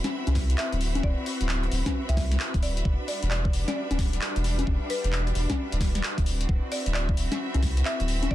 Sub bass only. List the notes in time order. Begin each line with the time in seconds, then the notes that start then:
0.27 C2
0.72 D1
1.03 D1
1.41 D1
1.72 D1
2.09 C2
2.54 D1
2.85 E1
3.22 E1
3.53 E1
3.90 D1
4.36 E1
4.67 E1
5.04 E1
5.35 E1
5.72 D1
6.18 D1
6.49 D1
6.86 D1
7.17 D1
7.54 C2
8.00 D1
8.31 D1